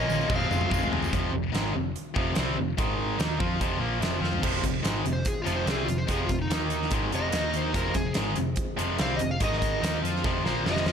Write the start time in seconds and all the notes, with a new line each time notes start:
Already playing: A#2 A#3 C#4 F4 C#5 D#5
0.07 A#1 F3 A#3 C#4 F4, high tom, tambourine
0.21 tambourine
0.27 F1 F2 C3 F3 G#3 A3 C4 C#4 F4 F#4 C#5, kick, mid tom, tambourine
0.35 F5
0.41 G#3 C4 F4 C5, mid tom, tambourine
0.48 F1 F3 G#3 C4 F4, mid tom
0.52 tambourine
0.61 mid tom
0.68 F1 F2 C3 F3 G#3 C4, kick, mid tom
0.72 F4, tambourine
0.83 floor tom, tambourine
0.91 F1 F3 G#3 C4 F4, floor tom
1.03 floor tom, tambourine
1.13 F1 F2 C3 F3, kick, closed hi-hat
1.33 F1 F2 C3
1.54 G#1 G#2 D#3 G#3, snare, closed hi-hat
1.75 F1 F2 C3
1.96 closed hi-hat
2.16 F1 F2 C3 F3, kick
2.35 C2 C3 G3 C4, snare, closed hi-hat
2.58 F1 F2 C3
2.78 G#1 G#2 D#3 G#3, kick, closed hi-hat
3.20 D#2 D#3 A#3 D#4, snare, closed hi-hat
3.39 F2 F3 C4 F4, kick
3.60 F1 F2 C3 F3, kick, closed hi-hat
3.79 A#1 A#2 F3 A#3
4.00 F1 F2 C3 F3, snare, closed hi-hat
4.20 F2 F3 C4 F4
4.24 snare
4.33 floor tom
4.43 F1 F2 C3 F3 G#3 C4 F4 C5, kick, crash
4.64 F1 F2 C3, kick, closed hi-hat
4.84 G#1 G#2 D#3 G#3, snare, closed hi-hat
5.04 F1 F2 C3, closed hi-hat
5.13 C5
5.25 G#4, kick, closed hi-hat
5.42 F4
5.46 F1 F2 C3 F3, closed hi-hat
5.56 C5
5.66 C2 C3 G3 C4 G#4, snare, closed hi-hat
5.85 F1 F2 C3 F4, closed hi-hat
5.98 C5
6.08 F1 F2 C3 F3 G#4, kick, closed hi-hat
6.26 F1 F2 F4, kick, closed hi-hat
6.30 C3
6.42 D#4
6.49 D#2 D#3 A#3 D#4 A#4, snare, closed hi-hat
6.70 closed hi-hat
6.82 snare
6.89 G#1 G#2 D#3 G#3 C4 F4 C5, kick, closed hi-hat
6.94 G#3
7.12 F1 F2 C3 F3 D#5, closed hi-hat
7.31 D#2 D#3 A#3 D#4 A#4, snare, closed hi-hat
7.54 C5, closed hi-hat
7.72 F1 F2 C3 F3 G#3 C4 G#4 A#4, kick, closed hi-hat
7.94 F1 F2 C3 G#4, kick, closed hi-hat
8.14 G#1 G#2 D#3 G#3, snare, closed hi-hat
8.36 F1 F2 C3, closed hi-hat
8.56 kick, closed hi-hat
8.77 F1 F2 C3 F3, closed hi-hat
8.98 C2 C3 G3 C4 F5, snare, closed hi-hat
9.16 F1 F2 C3 D#5, closed hi-hat
9.31 F5
9.40 G#1 G#2 D#3 G#3 D#4 G#4 D#5, kick, closed hi-hat
9.53 snare
9.59 D#5, kick, closed hi-hat
9.81 D#2 D#3 G#3 A#3 C4 D#4 F4 C5, snare, closed hi-hat
10.02 F2 F3 C4 F4, closed hi-hat
10.16 snare
10.24 F1 F2 C3 F3, kick, snare
10.44 A#1 A#2 F3 A#3 C5, snare
10.65 F1 F2 C3 F3 D#5, snare
10.76 snare
10.86 F2 F3 C4 F4, snare